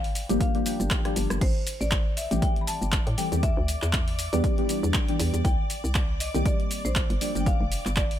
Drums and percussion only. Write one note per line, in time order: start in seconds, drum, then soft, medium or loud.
0.04 open hi-hat medium
0.15 open hi-hat loud
0.15 shaker medium
0.29 closed hi-hat medium
0.29 shaker soft
0.41 kick loud
0.41 closed hi-hat medium
0.41 shaker soft
0.55 closed hi-hat soft
0.66 open hi-hat loud
0.66 shaker medium
0.80 closed hi-hat soft
0.80 shaker soft
0.91 kick loud
0.91 cross-stick medium
0.91 clap loud
0.91 closed hi-hat medium
0.91 shaker soft
1.05 cross-stick medium
1.05 closed hi-hat medium
1.16 open hi-hat loud
1.16 shaker medium
1.30 cross-stick medium
1.30 closed hi-hat soft
1.30 shaker soft
1.41 kick loud
1.41 closed hi-hat medium
1.41 crash medium
1.41 shaker soft
1.67 open hi-hat loud
1.67 shaker medium
1.81 shaker soft
1.91 kick loud
1.91 clap loud
1.91 closed hi-hat medium
1.91 shaker soft
2.17 open hi-hat loud
2.17 shaker medium
2.31 closed hi-hat medium
2.31 shaker soft
2.42 kick loud
2.42 closed hi-hat medium
2.42 shaker soft
2.56 closed hi-hat soft
2.67 open hi-hat loud
2.67 shaker medium
2.82 shaker soft
2.92 kick loud
2.92 clap loud
2.92 closed hi-hat medium
2.92 shaker soft
3.07 closed hi-hat medium
3.18 open hi-hat loud
3.18 shaker medium
3.32 closed hi-hat soft
3.32 shaker soft
3.43 kick loud
3.43 closed hi-hat medium
3.43 shaker soft
3.68 open hi-hat loud
3.68 shaker medium
3.82 clap soft
3.82 shaker soft
3.93 kick loud
3.93 clap loud
3.93 closed hi-hat medium
3.93 shaker soft
4.08 open hi-hat medium
4.19 open hi-hat loud
4.19 shaker medium
4.33 closed hi-hat medium
4.33 shaker soft
4.44 kick loud
4.44 closed hi-hat medium
4.44 shaker soft
4.58 closed hi-hat soft
4.69 open hi-hat loud
4.69 shaker medium
4.84 shaker soft
4.94 kick loud
4.94 clap loud
4.94 closed hi-hat medium
4.94 shaker soft
5.09 closed hi-hat medium
5.20 open hi-hat loud
5.20 shaker medium
5.34 closed hi-hat soft
5.34 shaker soft
5.45 kick loud
5.45 closed hi-hat medium
5.45 shaker soft
5.70 open hi-hat loud
5.70 shaker medium
5.84 shaker soft
5.95 kick loud
5.95 clap loud
5.95 closed hi-hat medium
5.95 shaker soft
6.20 open hi-hat loud
6.20 shaker medium
6.35 closed hi-hat medium
6.35 shaker soft
6.46 kick loud
6.46 closed hi-hat medium
6.46 shaker soft
6.60 closed hi-hat soft
6.71 open hi-hat loud
6.71 shaker medium
6.85 shaker soft
6.96 kick loud
6.96 clap loud
6.96 closed hi-hat medium
6.96 shaker soft
7.10 closed hi-hat medium
7.21 open hi-hat loud
7.21 shaker medium
7.35 closed hi-hat soft
7.35 shaker soft
7.46 kick loud
7.46 closed hi-hat medium
7.46 shaker soft
7.72 open hi-hat loud
7.72 shaker medium
7.85 clap soft
7.85 shaker soft
7.96 kick loud
7.96 clap loud
7.96 closed hi-hat medium
7.96 shaker soft
8.11 open hi-hat medium